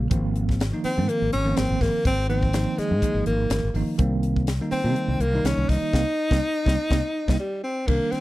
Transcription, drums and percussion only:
0, 0, Header, 1, 2, 480
1, 0, Start_track
1, 0, Tempo, 485044
1, 117, Time_signature, 4, 2, 24, 8
1, 8119, End_track
2, 0, Start_track
2, 0, Title_t, "Drums"
2, 107, Note_on_c, 9, 42, 75
2, 110, Note_on_c, 9, 36, 102
2, 206, Note_off_c, 9, 42, 0
2, 209, Note_off_c, 9, 36, 0
2, 353, Note_on_c, 9, 42, 59
2, 452, Note_off_c, 9, 42, 0
2, 483, Note_on_c, 9, 36, 69
2, 495, Note_on_c, 9, 38, 31
2, 582, Note_off_c, 9, 36, 0
2, 593, Note_off_c, 9, 38, 0
2, 597, Note_on_c, 9, 42, 71
2, 606, Note_on_c, 9, 38, 103
2, 696, Note_off_c, 9, 42, 0
2, 705, Note_off_c, 9, 38, 0
2, 831, Note_on_c, 9, 46, 65
2, 930, Note_off_c, 9, 46, 0
2, 1076, Note_on_c, 9, 42, 77
2, 1175, Note_off_c, 9, 42, 0
2, 1312, Note_on_c, 9, 42, 54
2, 1411, Note_off_c, 9, 42, 0
2, 1550, Note_on_c, 9, 42, 72
2, 1559, Note_on_c, 9, 38, 104
2, 1649, Note_off_c, 9, 42, 0
2, 1658, Note_off_c, 9, 38, 0
2, 1791, Note_on_c, 9, 36, 79
2, 1796, Note_on_c, 9, 46, 73
2, 1804, Note_on_c, 9, 38, 35
2, 1890, Note_off_c, 9, 36, 0
2, 1894, Note_off_c, 9, 46, 0
2, 1903, Note_off_c, 9, 38, 0
2, 2030, Note_on_c, 9, 36, 104
2, 2032, Note_on_c, 9, 42, 73
2, 2129, Note_off_c, 9, 36, 0
2, 2131, Note_off_c, 9, 42, 0
2, 2275, Note_on_c, 9, 42, 53
2, 2374, Note_off_c, 9, 42, 0
2, 2400, Note_on_c, 9, 36, 68
2, 2499, Note_off_c, 9, 36, 0
2, 2507, Note_on_c, 9, 42, 75
2, 2516, Note_on_c, 9, 38, 100
2, 2606, Note_off_c, 9, 42, 0
2, 2615, Note_off_c, 9, 38, 0
2, 2755, Note_on_c, 9, 42, 60
2, 2764, Note_on_c, 9, 38, 31
2, 2854, Note_off_c, 9, 42, 0
2, 2863, Note_off_c, 9, 38, 0
2, 2990, Note_on_c, 9, 36, 70
2, 2994, Note_on_c, 9, 42, 82
2, 3089, Note_off_c, 9, 36, 0
2, 3093, Note_off_c, 9, 42, 0
2, 3227, Note_on_c, 9, 42, 60
2, 3326, Note_off_c, 9, 42, 0
2, 3464, Note_on_c, 9, 42, 75
2, 3473, Note_on_c, 9, 38, 102
2, 3563, Note_off_c, 9, 42, 0
2, 3572, Note_off_c, 9, 38, 0
2, 3708, Note_on_c, 9, 46, 74
2, 3807, Note_off_c, 9, 46, 0
2, 3945, Note_on_c, 9, 42, 85
2, 3949, Note_on_c, 9, 36, 101
2, 4044, Note_off_c, 9, 42, 0
2, 4048, Note_off_c, 9, 36, 0
2, 4187, Note_on_c, 9, 42, 63
2, 4285, Note_off_c, 9, 42, 0
2, 4319, Note_on_c, 9, 36, 68
2, 4418, Note_off_c, 9, 36, 0
2, 4425, Note_on_c, 9, 42, 80
2, 4434, Note_on_c, 9, 38, 99
2, 4524, Note_off_c, 9, 42, 0
2, 4533, Note_off_c, 9, 38, 0
2, 4668, Note_on_c, 9, 46, 64
2, 4767, Note_off_c, 9, 46, 0
2, 4909, Note_on_c, 9, 42, 75
2, 5008, Note_off_c, 9, 42, 0
2, 5150, Note_on_c, 9, 42, 51
2, 5249, Note_off_c, 9, 42, 0
2, 5392, Note_on_c, 9, 42, 73
2, 5401, Note_on_c, 9, 38, 100
2, 5491, Note_off_c, 9, 42, 0
2, 5500, Note_off_c, 9, 38, 0
2, 5631, Note_on_c, 9, 36, 82
2, 5634, Note_on_c, 9, 46, 77
2, 5643, Note_on_c, 9, 38, 33
2, 5730, Note_off_c, 9, 36, 0
2, 5733, Note_off_c, 9, 46, 0
2, 5742, Note_off_c, 9, 38, 0
2, 5872, Note_on_c, 9, 36, 85
2, 5883, Note_on_c, 9, 38, 90
2, 5971, Note_off_c, 9, 36, 0
2, 5982, Note_off_c, 9, 38, 0
2, 6245, Note_on_c, 9, 36, 84
2, 6255, Note_on_c, 9, 38, 82
2, 6344, Note_off_c, 9, 36, 0
2, 6354, Note_off_c, 9, 38, 0
2, 6595, Note_on_c, 9, 36, 87
2, 6608, Note_on_c, 9, 38, 83
2, 6694, Note_off_c, 9, 36, 0
2, 6707, Note_off_c, 9, 38, 0
2, 6834, Note_on_c, 9, 36, 88
2, 6843, Note_on_c, 9, 38, 91
2, 6933, Note_off_c, 9, 36, 0
2, 6942, Note_off_c, 9, 38, 0
2, 7207, Note_on_c, 9, 36, 87
2, 7217, Note_on_c, 9, 38, 83
2, 7306, Note_off_c, 9, 36, 0
2, 7316, Note_off_c, 9, 38, 0
2, 7798, Note_on_c, 9, 36, 95
2, 7798, Note_on_c, 9, 49, 78
2, 7897, Note_off_c, 9, 36, 0
2, 7897, Note_off_c, 9, 49, 0
2, 8040, Note_on_c, 9, 42, 57
2, 8049, Note_on_c, 9, 38, 28
2, 8119, Note_off_c, 9, 38, 0
2, 8119, Note_off_c, 9, 42, 0
2, 8119, End_track
0, 0, End_of_file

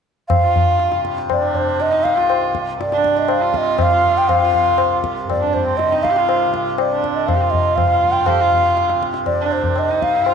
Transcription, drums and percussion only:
0, 0, Header, 1, 2, 480
1, 0, Start_track
1, 0, Tempo, 497925
1, 290, Time_signature, 4, 2, 24, 8
1, 9970, End_track
2, 0, Start_track
2, 0, Title_t, "Tabla"
2, 288, Note_on_c, 9, 60, 82
2, 288, Note_on_c, 9, 64, 73
2, 385, Note_off_c, 9, 60, 0
2, 385, Note_off_c, 9, 64, 0
2, 538, Note_on_c, 9, 64, 68
2, 635, Note_off_c, 9, 64, 0
2, 766, Note_on_c, 9, 62, 68
2, 862, Note_off_c, 9, 62, 0
2, 885, Note_on_c, 9, 62, 55
2, 981, Note_off_c, 9, 62, 0
2, 1010, Note_on_c, 9, 37, 47
2, 1106, Note_off_c, 9, 37, 0
2, 1140, Note_on_c, 9, 62, 57
2, 1237, Note_off_c, 9, 62, 0
2, 1250, Note_on_c, 9, 60, 66
2, 1250, Note_on_c, 9, 64, 59
2, 1346, Note_off_c, 9, 60, 0
2, 1346, Note_off_c, 9, 64, 0
2, 1488, Note_on_c, 9, 64, 48
2, 1585, Note_off_c, 9, 64, 0
2, 1733, Note_on_c, 9, 62, 65
2, 1829, Note_off_c, 9, 62, 0
2, 1855, Note_on_c, 9, 62, 50
2, 1951, Note_off_c, 9, 62, 0
2, 1979, Note_on_c, 9, 37, 48
2, 2075, Note_off_c, 9, 37, 0
2, 2102, Note_on_c, 9, 62, 57
2, 2198, Note_off_c, 9, 62, 0
2, 2214, Note_on_c, 9, 60, 65
2, 2310, Note_off_c, 9, 60, 0
2, 2456, Note_on_c, 9, 37, 54
2, 2552, Note_off_c, 9, 37, 0
2, 2706, Note_on_c, 9, 62, 70
2, 2802, Note_off_c, 9, 62, 0
2, 2817, Note_on_c, 9, 62, 57
2, 2914, Note_off_c, 9, 62, 0
2, 2933, Note_on_c, 9, 37, 47
2, 3030, Note_off_c, 9, 37, 0
2, 3052, Note_on_c, 9, 62, 56
2, 3149, Note_off_c, 9, 62, 0
2, 3166, Note_on_c, 9, 60, 63
2, 3263, Note_off_c, 9, 60, 0
2, 3412, Note_on_c, 9, 37, 54
2, 3509, Note_off_c, 9, 37, 0
2, 3648, Note_on_c, 9, 60, 62
2, 3648, Note_on_c, 9, 64, 56
2, 3745, Note_off_c, 9, 60, 0
2, 3745, Note_off_c, 9, 64, 0
2, 3898, Note_on_c, 9, 64, 44
2, 3994, Note_off_c, 9, 64, 0
2, 4137, Note_on_c, 9, 60, 82
2, 4137, Note_on_c, 9, 64, 71
2, 4234, Note_off_c, 9, 60, 0
2, 4234, Note_off_c, 9, 64, 0
2, 4379, Note_on_c, 9, 64, 62
2, 4475, Note_off_c, 9, 64, 0
2, 4608, Note_on_c, 9, 60, 65
2, 4705, Note_off_c, 9, 60, 0
2, 4857, Note_on_c, 9, 37, 55
2, 4953, Note_off_c, 9, 37, 0
2, 5106, Note_on_c, 9, 60, 71
2, 5106, Note_on_c, 9, 64, 57
2, 5202, Note_off_c, 9, 60, 0
2, 5202, Note_off_c, 9, 64, 0
2, 5346, Note_on_c, 9, 64, 51
2, 5442, Note_off_c, 9, 64, 0
2, 5583, Note_on_c, 9, 62, 66
2, 5680, Note_off_c, 9, 62, 0
2, 5709, Note_on_c, 9, 62, 50
2, 5806, Note_off_c, 9, 62, 0
2, 5829, Note_on_c, 9, 37, 45
2, 5925, Note_off_c, 9, 37, 0
2, 5940, Note_on_c, 9, 62, 56
2, 6036, Note_off_c, 9, 62, 0
2, 6061, Note_on_c, 9, 60, 62
2, 6157, Note_off_c, 9, 60, 0
2, 6302, Note_on_c, 9, 37, 52
2, 6398, Note_off_c, 9, 37, 0
2, 6539, Note_on_c, 9, 60, 70
2, 6636, Note_off_c, 9, 60, 0
2, 6786, Note_on_c, 9, 37, 50
2, 6883, Note_off_c, 9, 37, 0
2, 7023, Note_on_c, 9, 60, 66
2, 7023, Note_on_c, 9, 64, 55
2, 7120, Note_off_c, 9, 60, 0
2, 7120, Note_off_c, 9, 64, 0
2, 7264, Note_on_c, 9, 64, 45
2, 7361, Note_off_c, 9, 64, 0
2, 7498, Note_on_c, 9, 60, 63
2, 7498, Note_on_c, 9, 64, 58
2, 7594, Note_off_c, 9, 60, 0
2, 7594, Note_off_c, 9, 64, 0
2, 7739, Note_on_c, 9, 64, 46
2, 7836, Note_off_c, 9, 64, 0
2, 7966, Note_on_c, 9, 60, 84
2, 7966, Note_on_c, 9, 64, 80
2, 8062, Note_off_c, 9, 60, 0
2, 8062, Note_off_c, 9, 64, 0
2, 8215, Note_on_c, 9, 64, 62
2, 8312, Note_off_c, 9, 64, 0
2, 8455, Note_on_c, 9, 62, 71
2, 8552, Note_off_c, 9, 62, 0
2, 8576, Note_on_c, 9, 62, 62
2, 8673, Note_off_c, 9, 62, 0
2, 8700, Note_on_c, 9, 37, 50
2, 8796, Note_off_c, 9, 37, 0
2, 8810, Note_on_c, 9, 62, 58
2, 8907, Note_off_c, 9, 62, 0
2, 8928, Note_on_c, 9, 60, 66
2, 8928, Note_on_c, 9, 64, 60
2, 9025, Note_off_c, 9, 60, 0
2, 9025, Note_off_c, 9, 64, 0
2, 9166, Note_on_c, 9, 62, 49
2, 9262, Note_off_c, 9, 62, 0
2, 9289, Note_on_c, 9, 64, 46
2, 9386, Note_off_c, 9, 64, 0
2, 9406, Note_on_c, 9, 60, 56
2, 9503, Note_off_c, 9, 60, 0
2, 9662, Note_on_c, 9, 37, 52
2, 9759, Note_off_c, 9, 37, 0
2, 9893, Note_on_c, 9, 60, 61
2, 9970, Note_off_c, 9, 60, 0
2, 9970, End_track
0, 0, End_of_file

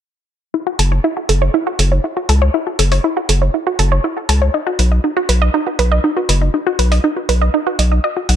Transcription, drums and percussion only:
0, 0, Header, 1, 2, 480
1, 0, Start_track
1, 0, Tempo, 500000
1, 519, Time_signature, 4, 2, 24, 8
1, 8027, End_track
2, 0, Start_track
2, 0, Title_t, "Drums"
2, 760, Note_on_c, 9, 46, 97
2, 856, Note_off_c, 9, 46, 0
2, 1239, Note_on_c, 9, 46, 97
2, 1335, Note_off_c, 9, 46, 0
2, 1719, Note_on_c, 9, 46, 90
2, 1815, Note_off_c, 9, 46, 0
2, 2199, Note_on_c, 9, 46, 96
2, 2295, Note_off_c, 9, 46, 0
2, 2679, Note_on_c, 9, 46, 100
2, 2775, Note_off_c, 9, 46, 0
2, 2800, Note_on_c, 9, 46, 59
2, 2896, Note_off_c, 9, 46, 0
2, 3159, Note_on_c, 9, 46, 101
2, 3255, Note_off_c, 9, 46, 0
2, 3639, Note_on_c, 9, 46, 97
2, 3735, Note_off_c, 9, 46, 0
2, 4119, Note_on_c, 9, 46, 104
2, 4215, Note_off_c, 9, 46, 0
2, 4599, Note_on_c, 9, 46, 104
2, 4695, Note_off_c, 9, 46, 0
2, 5079, Note_on_c, 9, 46, 100
2, 5175, Note_off_c, 9, 46, 0
2, 5559, Note_on_c, 9, 46, 92
2, 5655, Note_off_c, 9, 46, 0
2, 6039, Note_on_c, 9, 46, 105
2, 6135, Note_off_c, 9, 46, 0
2, 6519, Note_on_c, 9, 46, 103
2, 6615, Note_off_c, 9, 46, 0
2, 6641, Note_on_c, 9, 46, 55
2, 6737, Note_off_c, 9, 46, 0
2, 6998, Note_on_c, 9, 46, 102
2, 7094, Note_off_c, 9, 46, 0
2, 7479, Note_on_c, 9, 46, 91
2, 7575, Note_off_c, 9, 46, 0
2, 7959, Note_on_c, 9, 46, 100
2, 8027, Note_off_c, 9, 46, 0
2, 8027, End_track
0, 0, End_of_file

